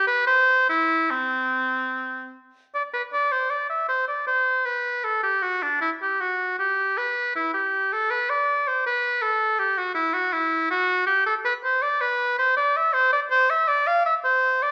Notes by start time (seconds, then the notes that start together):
0.07 B4
0.27 C5
0.69 E4
1.11 C4
2.74 D5
2.94 B4
3.13 D5
3.32 C5
3.50 D5
3.70 E5
3.89 C5
4.08 D5
4.27 C5
4.66 B4
5.04 A4
5.23 G4
5.43 F#4
5.62 D4
5.81 E4
6.02 G4
6.21 F#4
6.59 G4
6.98 B4
7.35 E4
7.54 G4
7.93 A4
8.11 B4
8.30 D5
8.68 C5
8.86 B4
9.22 A4
9.59 G4
9.78 F#4
9.95 E4
10.13 F#4
10.33 E4
10.70 F#4
11.07 G4
11.26 A4
11.45 B4
11.64 C5
11.82 D5
12.01 B4
12.39 C5
12.57 D5
12.77 E5
12.93 C5
13.13 D5
13.31 C5
13.50 E5
13.68 D5
13.87 F5
14.06 E5
14.24 C5
14.63 D5